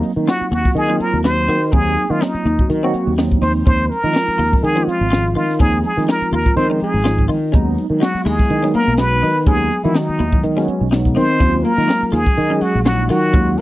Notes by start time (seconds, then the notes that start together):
Already playing: F#3 A#3 C4 D#4
0.03 closed hi-hat
0.16 D#3 F#3 A#3 C4 D#4
0.28 F4 F#4, snare, closed hi-hat
0.41 muted fretless electric bass stroke
0.51 D#2 F#4, open hi-hat
0.65 F#3 A#3 C4 F4, kick
0.75 D#3 G#4, closed hi-hat
0.88 F#3 A#3 C4 D#4 F4
1.00 A#4, muted fretless electric bass stroke, closed hi-hat
1.13 D#2
1.24 F#3 A#3 C4 D#4 F#4 C5, snare, closed hi-hat
1.48 D#3 F#4, open hi-hat
1.64 F#4
1.72 D#2 F#3 A#3 C4 D#4 G#4, kick, closed hi-hat
1.97 closed hi-hat
2.10 D#3 F#3 A#3 C4 F4
2.21 C#4 D#4, snare, closed hi-hat
2.34 muted fretless electric bass stroke
2.45 D#2 D#4, closed hi-hat
2.59 F#3 A#3 C4 F#4, kick
2.70 D#3, closed hi-hat
2.83 F#3 A#3 C4 F#4
2.94 muted fretless electric bass stroke, closed hi-hat
3.07 D#2
3.18 F#3 A#3 C4 D#4, snare, closed hi-hat
3.32 kick
3.42 D#2 F3 G#3 C4 D#4 C5, open hi-hat
3.66 D#2 C#4 C5, kick, closed hi-hat
3.90 A#4, closed hi-hat
4.04 D#3 F3 G#3 C4 F4
4.13 D#4, snare, closed hi-hat
4.28 muted fretless electric bass stroke
4.38 D#2 F4, open hi-hat
4.51 F3 G#3 C4 D#4, kick
4.63 D#3 G#4, closed hi-hat
4.75 F3 G#3 C4 C#4 F4
4.87 F4, muted fretless electric bass stroke, closed hi-hat
5.01 G#1
5.10 F3 G#3 C4 F4, snare, closed hi-hat
5.35 D#3 F4, open hi-hat
5.48 C4, snare
5.59 D#2 F3 G#3 C4 C#4 D#4 G#4, kick, closed hi-hat
5.84 G#4, closed hi-hat
5.96 D#3 F3 G#3 C4 F4, snare
6.08 D#4 A#4, snare, closed hi-hat
6.22 muted fretless electric bass stroke
6.32 D#2 F4 A#4, closed hi-hat
6.45 F3 G#3 C4 F4, kick
6.56 D#3 C4 C5, closed hi-hat
6.70 F3 G#3 C4 C#4 D#4
6.80 G#3 G#4, muted fretless electric bass stroke, closed hi-hat
6.94 G#1
7.04 F3 G#3 C4 D#4 F4, snare, closed hi-hat
7.18 kick
7.28 D#3 F4, open hi-hat
7.44 D#4
7.52 D#2 F#3 G#3 B3 C#4 D#4, kick, closed hi-hat
7.78 closed hi-hat
7.90 D#3 F#3 G#3 B3 D#4
8.00 F#3 D#4 F#4, snare, closed hi-hat
8.14 muted fretless electric bass stroke, snare
8.25 D#2 G#3 E4 G#4, open hi-hat
8.38 F#3 G#3 B3 E4, kick
8.50 D#3, closed hi-hat
8.63 F#3 G#3 B3 C#4 D#4, snare
8.74 A#3 A#4, muted fretless electric bass stroke, closed hi-hat
8.87 B1
8.98 F#3 G#3 B3 D#4 F#4 B4, snare, closed hi-hat
9.22 D#3 D#4, open hi-hat
9.35 B3
9.45 D#2 F#3 G#3 B3 C#4 D#4 G#4, kick, closed hi-hat
9.71 closed hi-hat
9.83 D#3 E3 F#3 G#3 B3 E4 F#4
9.95 D#3 D#4, snare, closed hi-hat
10.09 muted fretless electric bass stroke
10.19 D#2 E4, closed hi-hat
10.32 F#3 G#3 B3 D#4, kick
10.43 D#3, closed hi-hat
10.56 F#3 G#3 B3 C#4, snare
10.68 muted fretless electric bass stroke, closed hi-hat
10.81 B1
10.91 F#3 G#3 B3 D#4, snare, closed hi-hat
11.05 kick
11.15 D#3 C4 D#4 C5, open hi-hat
11.29 B3
11.39 D#2 F#3 G#3 C#4 F4, kick, closed hi-hat
11.64 A#3 A#4, closed hi-hat
11.76 D#3 F#3 G#3 C#4 F4, snare
11.88 D#4, snare, closed hi-hat
12.02 muted fretless electric bass stroke
12.12 D#2 G#3 F4 G#4, open hi-hat
12.25 F#3 G#3 C#4 G#4, kick
12.38 D#3, closed hi-hat
12.50 F#3 G#3 C#4 G#4
12.61 F#3 F#4, muted fretless electric bass stroke, closed hi-hat
12.75 A#1
12.85 F#3 G#3 C#4 D#4 F4 F#4, snare, closed hi-hat
13.09 D#3 F#3 F4 F#4, snare, open hi-hat
13.33 D#2 F#3 G#3 C#4 F4, kick, closed hi-hat
13.58 A#4, closed hi-hat